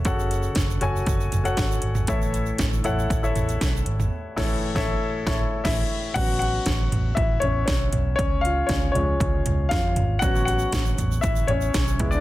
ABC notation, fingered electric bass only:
X:1
M:4/4
L:1/16
Q:1/4=118
K:A
V:1 name="Fingered electric bass" clef=bass
F,,,4 F,,,2 F,,,2 F,,,2 F,,,2 G,,,2 G,,,2 | A,,,4 A,,,2 A,,,2 A,,,2 A,,,2 B,,,2 G,,,2 | z2 A,,,2 z A,,,2 z2 A,,,2 z A,,,2 z2 | A,,,4 A,,,2 A,,,2 A,,,2 A,,,2 B,,,2 B,,,2 |
C,,4 C,,2 C,,2 C,,2 C,,2 ^E,,2 G,,,2 | A,,,4 A,,,2 A,,,2 A,,,2 A,,,2 B,,,2 C,,2 |]